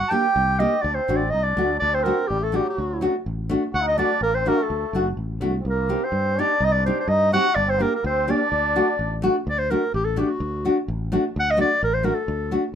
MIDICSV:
0, 0, Header, 1, 5, 480
1, 0, Start_track
1, 0, Tempo, 481155
1, 842, Time_signature, 2, 2, 24, 8
1, 7073, Tempo, 470958
1, 12842, End_track
2, 0, Start_track
2, 0, Title_t, "Clarinet"
2, 0, Program_c, 0, 71
2, 81, Note_on_c, 0, 81, 82
2, 103, Note_on_c, 0, 79, 106
2, 118, Note_off_c, 0, 81, 0
2, 593, Note_on_c, 0, 75, 99
2, 608, Note_off_c, 0, 79, 0
2, 815, Note_on_c, 0, 74, 90
2, 830, Note_off_c, 0, 75, 0
2, 943, Note_on_c, 0, 72, 84
2, 958, Note_off_c, 0, 74, 0
2, 1163, Note_on_c, 0, 74, 82
2, 1178, Note_off_c, 0, 72, 0
2, 1296, Note_on_c, 0, 75, 97
2, 1311, Note_off_c, 0, 74, 0
2, 1432, Note_on_c, 0, 74, 82
2, 1447, Note_off_c, 0, 75, 0
2, 1785, Note_off_c, 0, 74, 0
2, 1791, Note_on_c, 0, 74, 99
2, 1941, Note_on_c, 0, 72, 92
2, 1955, Note_off_c, 0, 74, 0
2, 2028, Note_on_c, 0, 70, 90
2, 2043, Note_off_c, 0, 72, 0
2, 2272, Note_on_c, 0, 67, 96
2, 2287, Note_off_c, 0, 70, 0
2, 2432, Note_on_c, 0, 69, 86
2, 2447, Note_off_c, 0, 67, 0
2, 2556, Note_on_c, 0, 67, 89
2, 2571, Note_off_c, 0, 69, 0
2, 2664, Note_off_c, 0, 67, 0
2, 2688, Note_on_c, 0, 66, 77
2, 3117, Note_off_c, 0, 66, 0
2, 3738, Note_on_c, 0, 78, 103
2, 3846, Note_off_c, 0, 78, 0
2, 3872, Note_on_c, 0, 75, 94
2, 3970, Note_off_c, 0, 75, 0
2, 3976, Note_on_c, 0, 74, 91
2, 4196, Note_off_c, 0, 74, 0
2, 4219, Note_on_c, 0, 70, 100
2, 4336, Note_on_c, 0, 72, 88
2, 4351, Note_off_c, 0, 70, 0
2, 4469, Note_on_c, 0, 70, 100
2, 4484, Note_off_c, 0, 72, 0
2, 4617, Note_on_c, 0, 69, 79
2, 4632, Note_off_c, 0, 70, 0
2, 5070, Note_off_c, 0, 69, 0
2, 5685, Note_on_c, 0, 70, 78
2, 6023, Note_on_c, 0, 72, 85
2, 6038, Note_off_c, 0, 70, 0
2, 6382, Note_on_c, 0, 74, 95
2, 6397, Note_off_c, 0, 72, 0
2, 6626, Note_on_c, 0, 75, 97
2, 6641, Note_off_c, 0, 74, 0
2, 6705, Note_on_c, 0, 74, 87
2, 6720, Note_off_c, 0, 75, 0
2, 6828, Note_off_c, 0, 74, 0
2, 6840, Note_on_c, 0, 72, 81
2, 6947, Note_off_c, 0, 72, 0
2, 6982, Note_on_c, 0, 72, 78
2, 7067, Note_on_c, 0, 75, 111
2, 7082, Note_off_c, 0, 72, 0
2, 7311, Note_off_c, 0, 75, 0
2, 7324, Note_on_c, 0, 78, 109
2, 7540, Note_on_c, 0, 74, 98
2, 7556, Note_off_c, 0, 78, 0
2, 7693, Note_on_c, 0, 72, 98
2, 7708, Note_off_c, 0, 74, 0
2, 7816, Note_on_c, 0, 70, 91
2, 7831, Note_off_c, 0, 72, 0
2, 7928, Note_off_c, 0, 70, 0
2, 7954, Note_on_c, 0, 70, 81
2, 8050, Note_off_c, 0, 70, 0
2, 8065, Note_on_c, 0, 72, 86
2, 8314, Note_on_c, 0, 74, 97
2, 8330, Note_off_c, 0, 72, 0
2, 9263, Note_off_c, 0, 74, 0
2, 9515, Note_on_c, 0, 74, 99
2, 9616, Note_on_c, 0, 72, 92
2, 9632, Note_off_c, 0, 74, 0
2, 9738, Note_on_c, 0, 70, 91
2, 9753, Note_off_c, 0, 72, 0
2, 9973, Note_off_c, 0, 70, 0
2, 9982, Note_on_c, 0, 67, 102
2, 10089, Note_on_c, 0, 69, 79
2, 10104, Note_off_c, 0, 67, 0
2, 10234, Note_on_c, 0, 67, 83
2, 10250, Note_off_c, 0, 69, 0
2, 10343, Note_on_c, 0, 66, 82
2, 10358, Note_off_c, 0, 67, 0
2, 10814, Note_off_c, 0, 66, 0
2, 11463, Note_on_c, 0, 78, 104
2, 11578, Note_on_c, 0, 75, 100
2, 11593, Note_off_c, 0, 78, 0
2, 11669, Note_off_c, 0, 75, 0
2, 11679, Note_on_c, 0, 74, 96
2, 11883, Note_off_c, 0, 74, 0
2, 11910, Note_on_c, 0, 70, 98
2, 12013, Note_on_c, 0, 72, 87
2, 12029, Note_off_c, 0, 70, 0
2, 12125, Note_on_c, 0, 70, 85
2, 12140, Note_off_c, 0, 72, 0
2, 12225, Note_on_c, 0, 69, 75
2, 12241, Note_off_c, 0, 70, 0
2, 12706, Note_off_c, 0, 69, 0
2, 12842, End_track
3, 0, Start_track
3, 0, Title_t, "Nylon-string guitar"
3, 0, Program_c, 1, 24
3, 109, Note_on_c, 1, 58, 64
3, 113, Note_on_c, 1, 62, 50
3, 120, Note_on_c, 1, 67, 66
3, 233, Note_off_c, 1, 58, 0
3, 235, Note_off_c, 1, 62, 0
3, 239, Note_off_c, 1, 67, 0
3, 592, Note_on_c, 1, 58, 60
3, 598, Note_on_c, 1, 67, 71
3, 601, Note_on_c, 1, 62, 55
3, 718, Note_off_c, 1, 58, 0
3, 719, Note_off_c, 1, 67, 0
3, 722, Note_off_c, 1, 62, 0
3, 1078, Note_on_c, 1, 57, 61
3, 1088, Note_on_c, 1, 62, 61
3, 1090, Note_on_c, 1, 66, 77
3, 1202, Note_off_c, 1, 57, 0
3, 1207, Note_off_c, 1, 62, 0
3, 1208, Note_off_c, 1, 66, 0
3, 1564, Note_on_c, 1, 57, 63
3, 1565, Note_on_c, 1, 62, 57
3, 1580, Note_on_c, 1, 66, 71
3, 1686, Note_off_c, 1, 57, 0
3, 1686, Note_off_c, 1, 62, 0
3, 1694, Note_off_c, 1, 66, 0
3, 2050, Note_on_c, 1, 57, 62
3, 2055, Note_on_c, 1, 62, 55
3, 2056, Note_on_c, 1, 66, 69
3, 2170, Note_off_c, 1, 57, 0
3, 2172, Note_off_c, 1, 62, 0
3, 2172, Note_off_c, 1, 66, 0
3, 2515, Note_on_c, 1, 57, 67
3, 2525, Note_on_c, 1, 62, 60
3, 2532, Note_on_c, 1, 66, 76
3, 2643, Note_off_c, 1, 57, 0
3, 2649, Note_off_c, 1, 62, 0
3, 2650, Note_off_c, 1, 66, 0
3, 3004, Note_on_c, 1, 57, 66
3, 3012, Note_on_c, 1, 62, 62
3, 3016, Note_on_c, 1, 66, 77
3, 3128, Note_off_c, 1, 57, 0
3, 3129, Note_off_c, 1, 62, 0
3, 3133, Note_off_c, 1, 66, 0
3, 3486, Note_on_c, 1, 57, 81
3, 3489, Note_on_c, 1, 62, 60
3, 3500, Note_on_c, 1, 66, 74
3, 3609, Note_off_c, 1, 57, 0
3, 3609, Note_off_c, 1, 62, 0
3, 3615, Note_off_c, 1, 66, 0
3, 3967, Note_on_c, 1, 57, 73
3, 3977, Note_on_c, 1, 62, 64
3, 3980, Note_on_c, 1, 66, 67
3, 4088, Note_off_c, 1, 57, 0
3, 4093, Note_off_c, 1, 62, 0
3, 4094, Note_off_c, 1, 66, 0
3, 4445, Note_on_c, 1, 57, 60
3, 4451, Note_on_c, 1, 62, 64
3, 4458, Note_on_c, 1, 66, 63
3, 4566, Note_off_c, 1, 57, 0
3, 4570, Note_off_c, 1, 62, 0
3, 4573, Note_off_c, 1, 66, 0
3, 4933, Note_on_c, 1, 57, 57
3, 4937, Note_on_c, 1, 62, 59
3, 4945, Note_on_c, 1, 66, 73
3, 5049, Note_off_c, 1, 57, 0
3, 5051, Note_off_c, 1, 62, 0
3, 5055, Note_off_c, 1, 66, 0
3, 5397, Note_on_c, 1, 57, 75
3, 5400, Note_on_c, 1, 62, 58
3, 5406, Note_on_c, 1, 66, 73
3, 5520, Note_off_c, 1, 57, 0
3, 5521, Note_off_c, 1, 62, 0
3, 5525, Note_off_c, 1, 66, 0
3, 5877, Note_on_c, 1, 60, 59
3, 5882, Note_on_c, 1, 63, 57
3, 5884, Note_on_c, 1, 67, 69
3, 5998, Note_off_c, 1, 60, 0
3, 6001, Note_off_c, 1, 63, 0
3, 6001, Note_off_c, 1, 67, 0
3, 6369, Note_on_c, 1, 60, 59
3, 6373, Note_on_c, 1, 63, 58
3, 6378, Note_on_c, 1, 67, 60
3, 6482, Note_off_c, 1, 60, 0
3, 6484, Note_off_c, 1, 63, 0
3, 6486, Note_off_c, 1, 67, 0
3, 6847, Note_on_c, 1, 60, 66
3, 6848, Note_on_c, 1, 63, 63
3, 6857, Note_on_c, 1, 67, 63
3, 6958, Note_off_c, 1, 63, 0
3, 6960, Note_off_c, 1, 60, 0
3, 6964, Note_off_c, 1, 67, 0
3, 7310, Note_on_c, 1, 60, 57
3, 7320, Note_on_c, 1, 63, 67
3, 7325, Note_on_c, 1, 67, 69
3, 7433, Note_off_c, 1, 60, 0
3, 7439, Note_off_c, 1, 63, 0
3, 7439, Note_off_c, 1, 67, 0
3, 7789, Note_on_c, 1, 58, 60
3, 7795, Note_on_c, 1, 62, 59
3, 7802, Note_on_c, 1, 67, 70
3, 7915, Note_off_c, 1, 58, 0
3, 7918, Note_off_c, 1, 62, 0
3, 7920, Note_off_c, 1, 67, 0
3, 8282, Note_on_c, 1, 58, 65
3, 8284, Note_on_c, 1, 62, 56
3, 8288, Note_on_c, 1, 67, 65
3, 8403, Note_off_c, 1, 58, 0
3, 8403, Note_off_c, 1, 62, 0
3, 8406, Note_off_c, 1, 67, 0
3, 8771, Note_on_c, 1, 57, 58
3, 8774, Note_on_c, 1, 62, 58
3, 8777, Note_on_c, 1, 66, 75
3, 8889, Note_off_c, 1, 57, 0
3, 8889, Note_off_c, 1, 62, 0
3, 8891, Note_off_c, 1, 66, 0
3, 9245, Note_on_c, 1, 57, 79
3, 9255, Note_on_c, 1, 62, 71
3, 9259, Note_on_c, 1, 66, 84
3, 9366, Note_off_c, 1, 57, 0
3, 9371, Note_off_c, 1, 62, 0
3, 9374, Note_off_c, 1, 66, 0
3, 9738, Note_on_c, 1, 57, 57
3, 9744, Note_on_c, 1, 62, 58
3, 9748, Note_on_c, 1, 66, 71
3, 9853, Note_off_c, 1, 57, 0
3, 9856, Note_off_c, 1, 62, 0
3, 9858, Note_off_c, 1, 66, 0
3, 10206, Note_on_c, 1, 57, 65
3, 10214, Note_on_c, 1, 66, 73
3, 10215, Note_on_c, 1, 62, 59
3, 10327, Note_off_c, 1, 57, 0
3, 10329, Note_off_c, 1, 66, 0
3, 10331, Note_off_c, 1, 62, 0
3, 10699, Note_on_c, 1, 57, 63
3, 10705, Note_on_c, 1, 62, 55
3, 10707, Note_on_c, 1, 66, 80
3, 10813, Note_off_c, 1, 57, 0
3, 10814, Note_off_c, 1, 62, 0
3, 10816, Note_off_c, 1, 66, 0
3, 11178, Note_on_c, 1, 57, 81
3, 11184, Note_on_c, 1, 62, 77
3, 11190, Note_on_c, 1, 66, 76
3, 11291, Note_off_c, 1, 57, 0
3, 11294, Note_off_c, 1, 62, 0
3, 11295, Note_off_c, 1, 66, 0
3, 11637, Note_on_c, 1, 57, 73
3, 11643, Note_on_c, 1, 62, 71
3, 11649, Note_on_c, 1, 66, 73
3, 11759, Note_off_c, 1, 57, 0
3, 11760, Note_off_c, 1, 62, 0
3, 11765, Note_off_c, 1, 66, 0
3, 12111, Note_on_c, 1, 57, 65
3, 12117, Note_on_c, 1, 62, 60
3, 12122, Note_on_c, 1, 66, 70
3, 12233, Note_off_c, 1, 57, 0
3, 12236, Note_off_c, 1, 62, 0
3, 12239, Note_off_c, 1, 66, 0
3, 12601, Note_on_c, 1, 57, 57
3, 12606, Note_on_c, 1, 62, 57
3, 12608, Note_on_c, 1, 66, 71
3, 12716, Note_off_c, 1, 66, 0
3, 12717, Note_off_c, 1, 57, 0
3, 12717, Note_off_c, 1, 62, 0
3, 12842, End_track
4, 0, Start_track
4, 0, Title_t, "Trombone"
4, 0, Program_c, 2, 57
4, 0, Note_on_c, 2, 66, 93
4, 98, Note_on_c, 2, 67, 94
4, 113, Note_off_c, 2, 66, 0
4, 825, Note_on_c, 2, 62, 81
4, 840, Note_off_c, 2, 67, 0
4, 944, Note_on_c, 2, 60, 77
4, 959, Note_off_c, 2, 62, 0
4, 1316, Note_on_c, 2, 63, 85
4, 1331, Note_off_c, 2, 60, 0
4, 1417, Note_on_c, 2, 62, 73
4, 1432, Note_off_c, 2, 63, 0
4, 1790, Note_off_c, 2, 62, 0
4, 1796, Note_on_c, 2, 62, 89
4, 1910, Note_off_c, 2, 62, 0
4, 1916, Note_on_c, 2, 60, 91
4, 2295, Note_on_c, 2, 55, 81
4, 2310, Note_off_c, 2, 60, 0
4, 2396, Note_off_c, 2, 55, 0
4, 2402, Note_on_c, 2, 57, 65
4, 2551, Note_on_c, 2, 55, 75
4, 2566, Note_off_c, 2, 57, 0
4, 2639, Note_on_c, 2, 54, 66
4, 2654, Note_off_c, 2, 55, 0
4, 3125, Note_off_c, 2, 54, 0
4, 3723, Note_on_c, 2, 66, 88
4, 3813, Note_on_c, 2, 63, 90
4, 3828, Note_off_c, 2, 66, 0
4, 3939, Note_on_c, 2, 62, 81
4, 3954, Note_off_c, 2, 63, 0
4, 4212, Note_on_c, 2, 58, 85
4, 4227, Note_off_c, 2, 62, 0
4, 4325, Note_off_c, 2, 58, 0
4, 4331, Note_on_c, 2, 60, 72
4, 4442, Note_off_c, 2, 60, 0
4, 4454, Note_on_c, 2, 58, 86
4, 4563, Note_on_c, 2, 57, 69
4, 4578, Note_off_c, 2, 58, 0
4, 5043, Note_off_c, 2, 57, 0
4, 5578, Note_on_c, 2, 60, 47
4, 5648, Note_on_c, 2, 58, 83
4, 5663, Note_off_c, 2, 60, 0
4, 6029, Note_on_c, 2, 60, 80
4, 6044, Note_off_c, 2, 58, 0
4, 6359, Note_on_c, 2, 62, 89
4, 6374, Note_off_c, 2, 60, 0
4, 6605, Note_on_c, 2, 63, 89
4, 6620, Note_off_c, 2, 62, 0
4, 6724, Note_on_c, 2, 62, 79
4, 6739, Note_off_c, 2, 63, 0
4, 7085, Note_on_c, 2, 63, 92
4, 7100, Note_off_c, 2, 62, 0
4, 7304, Note_off_c, 2, 63, 0
4, 7311, Note_on_c, 2, 66, 108
4, 7554, Note_on_c, 2, 62, 81
4, 7569, Note_off_c, 2, 66, 0
4, 7652, Note_off_c, 2, 62, 0
4, 7658, Note_on_c, 2, 60, 82
4, 7783, Note_on_c, 2, 58, 79
4, 7798, Note_off_c, 2, 60, 0
4, 8061, Note_on_c, 2, 60, 94
4, 8076, Note_off_c, 2, 58, 0
4, 8283, Note_off_c, 2, 60, 0
4, 8289, Note_on_c, 2, 62, 92
4, 9210, Note_off_c, 2, 62, 0
4, 12842, End_track
5, 0, Start_track
5, 0, Title_t, "Fretless electric bass"
5, 0, Program_c, 3, 35
5, 357, Note_on_c, 3, 36, 102
5, 648, Note_off_c, 3, 36, 0
5, 841, Note_on_c, 3, 38, 100
5, 987, Note_off_c, 3, 38, 0
5, 1084, Note_on_c, 3, 33, 86
5, 1302, Note_off_c, 3, 33, 0
5, 1328, Note_on_c, 3, 36, 68
5, 1544, Note_off_c, 3, 36, 0
5, 1563, Note_on_c, 3, 38, 85
5, 1782, Note_off_c, 3, 38, 0
5, 1817, Note_on_c, 3, 38, 101
5, 2103, Note_off_c, 3, 38, 0
5, 2299, Note_on_c, 3, 33, 82
5, 2585, Note_off_c, 3, 33, 0
5, 2776, Note_on_c, 3, 38, 91
5, 3063, Note_off_c, 3, 38, 0
5, 3254, Note_on_c, 3, 33, 82
5, 3541, Note_off_c, 3, 33, 0
5, 3732, Note_on_c, 3, 38, 101
5, 4019, Note_off_c, 3, 38, 0
5, 4199, Note_on_c, 3, 33, 78
5, 4489, Note_off_c, 3, 33, 0
5, 4689, Note_on_c, 3, 38, 82
5, 4832, Note_off_c, 3, 38, 0
5, 4920, Note_on_c, 3, 30, 87
5, 5138, Note_off_c, 3, 30, 0
5, 5158, Note_on_c, 3, 33, 75
5, 5376, Note_off_c, 3, 33, 0
5, 5393, Note_on_c, 3, 36, 84
5, 5612, Note_off_c, 3, 36, 0
5, 5635, Note_on_c, 3, 36, 94
5, 5924, Note_off_c, 3, 36, 0
5, 6104, Note_on_c, 3, 43, 81
5, 6394, Note_off_c, 3, 43, 0
5, 6588, Note_on_c, 3, 36, 100
5, 6876, Note_off_c, 3, 36, 0
5, 7059, Note_on_c, 3, 43, 105
5, 7353, Note_off_c, 3, 43, 0
5, 7555, Note_on_c, 3, 31, 96
5, 7846, Note_off_c, 3, 31, 0
5, 8044, Note_on_c, 3, 38, 105
5, 8333, Note_off_c, 3, 38, 0
5, 8528, Note_on_c, 3, 38, 97
5, 8816, Note_off_c, 3, 38, 0
5, 9010, Note_on_c, 3, 33, 90
5, 9298, Note_off_c, 3, 33, 0
5, 9495, Note_on_c, 3, 38, 91
5, 9781, Note_off_c, 3, 38, 0
5, 9979, Note_on_c, 3, 33, 94
5, 10263, Note_off_c, 3, 33, 0
5, 10449, Note_on_c, 3, 38, 95
5, 10736, Note_off_c, 3, 38, 0
5, 10938, Note_on_c, 3, 33, 91
5, 11221, Note_off_c, 3, 33, 0
5, 11427, Note_on_c, 3, 38, 96
5, 11706, Note_off_c, 3, 38, 0
5, 11899, Note_on_c, 3, 33, 101
5, 12179, Note_off_c, 3, 33, 0
5, 12364, Note_on_c, 3, 38, 105
5, 12646, Note_off_c, 3, 38, 0
5, 12842, End_track
0, 0, End_of_file